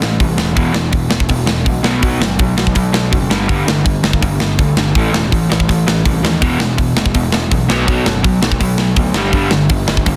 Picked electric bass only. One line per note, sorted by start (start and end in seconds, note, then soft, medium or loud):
0.00 0.19 A1 medium
0.20 0.38 C2 medium
0.39 0.56 E1 medium
0.57 0.74 E1 medium
0.75 0.92 E1 medium
0.93 1.10 E1 medium
1.11 1.29 E1 medium
1.29 1.47 E1 medium
1.48 1.65 E1 medium
1.66 1.84 B1 medium
1.85 2.02 B1 medium
2.03 2.20 B1 medium
2.21 2.38 F#1 medium
2.39 2.57 B1 medium
2.57 2.75 B1 medium
2.76 3.11 B1 medium
3.13 3.29 F#1 medium
3.30 3.48 G1 medium
3.49 3.65 G1 loud
3.66 3.84 G1 medium
3.86 4.02 G1 medium
4.03 4.21 G1 medium
4.23 4.40 G1 medium
4.40 4.58 G1 medium
4.59 4.76 D2 medium
4.76 4.95 G1 medium
4.95 5.12 A1 medium
5.13 5.31 E1 medium
5.32 5.49 A1 medium
5.50 5.68 A1 medium
5.69 6.04 A1 medium
6.05 6.22 C2 medium
6.23 6.41 D#2 medium
6.42 6.59 E1 loud
6.59 6.77 E1 medium
6.79 6.95 E1 medium
6.96 7.14 E1 medium
7.15 7.32 E1 medium
7.33 7.50 E1 medium
7.52 7.69 B1 medium
7.69 7.87 B1 medium
7.88 8.05 B1 medium
8.06 8.23 F#1 medium
8.24 8.42 B1 medium
8.42 8.60 B1 medium
8.61 8.96 B1 medium
8.97 9.14 D2 medium
9.14 9.32 G1 medium
9.33 9.51 G1 medium
9.52 9.69 G1 medium
9.70 9.87 G1 medium
9.88 10.06 G1 medium
10.07 10.16 G1 medium